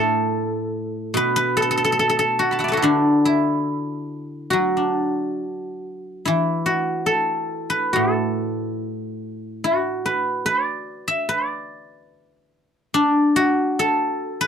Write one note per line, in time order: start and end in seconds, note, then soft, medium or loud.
0.00 1.14 A2 medium
0.00 1.56 A4 loud
1.14 2.84 B2 medium
1.14 1.36 B4 medium
1.36 2.68 B4 medium
1.57 1.62 A4 medium
1.62 1.70 A4 medium
1.71 1.77 A4 medium
1.77 1.84 A4 medium
1.84 1.92 A4 medium
1.92 1.99 A4 medium
1.99 2.09 A4 medium
2.09 2.18 A4 medium
2.19 2.71 A4 medium
2.39 2.73 F#4 medium
2.51 3.97 A5 soft
2.51 3.86 B5 soft
2.59 4.32 E5 soft
2.59 4.19 F#5 soft
2.64 4.49 D5 soft
2.68 4.91 A4 soft
2.68 4.73 B4 medium
2.73 3.25 E4 medium
2.73 4.50 F#4 medium
2.82 5.41 D3 medium
2.82 4.76 D4 medium
3.25 5.86 E4 medium
4.50 7.13 F#3 soft
4.50 6.65 F#4 medium
4.77 6.51 D4 soft
6.25 8.81 E3 medium
6.25 8.86 E4 medium
6.66 9.09 F#4 medium
7.06 7.93 A4 medium
7.70 9.74 B4 medium
7.93 10.47 A2 medium
7.93 10.12 A4 medium
9.64 12.07 F#4 medium
10.06 12.10 B4 medium
10.46 11.28 D5 medium
11.08 12.80 E5 medium
11.29 13.13 D5 medium
12.94 14.47 D4 medium
13.36 14.47 F#4 medium
13.79 14.47 A4 medium
14.41 14.47 B4 medium